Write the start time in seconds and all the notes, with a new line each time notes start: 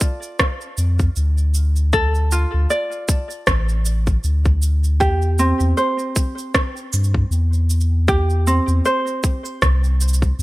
Already playing: F4 A4 D5
0.01 kick, cabasa
0.23 cabasa
0.39 kick, cross-stick, cabasa
0.61 cabasa
0.78 F2, cabasa
0.99 kick, cabasa
1.16 D2, cabasa
1.38 cabasa
1.54 cabasa
1.76 cabasa
1.93 A4, kick, cabasa
2.15 cabasa
2.32 F4, cabasa
2.54 D2
2.70 D5, cabasa
2.92 cabasa
3.09 kick, cabasa
3.30 cabasa
3.47 A1, kick, cross-stick, cabasa
3.69 cabasa
3.86 cabasa
4.07 kick, cabasa
4.24 D2, cabasa
4.45 kick, cabasa
4.62 cabasa
4.84 cabasa
5.00 E2 G4, kick, cabasa
5.22 cabasa
5.39 C4, cabasa
5.60 E2, cabasa
5.77 C5, cabasa
5.99 cabasa
6.16 kick, cabasa
6.38 cabasa
6.54 kick, cross-stick, cabasa
6.77 cabasa
6.93 G2, cabasa
7.04 cabasa
7.14 kick
7.31 E2, cabasa
7.53 cabasa
7.70 cabasa
7.81 cabasa
8.08 G4, kick, cabasa
8.30 cabasa
8.47 C4, cabasa
8.68 E2, cabasa
8.85 C5, cabasa
9.07 cabasa
9.24 kick, cabasa
9.45 cabasa
9.62 C2, kick, cross-stick, cabasa
9.84 cabasa
10.01 cabasa
10.08 cabasa
10.14 cabasa
10.22 kick, cabasa
10.39 E2